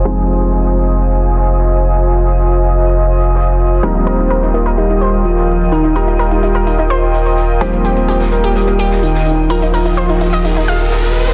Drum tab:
HH |x-x-x-x-x-x-x-x-|xxo-x-x-x-x-x-x-|x-x-x-x-x-x-xx-x|x-x-x-x-x-x-xxx-|
SD |-----o-----o-o--|------------oo--|-----o----------|----------------|

HH |x-x-x-x-x-x-x-x-|xxo-x-x-x-x-x-xx|
SD |-----o-----o-o--|------------oo-o|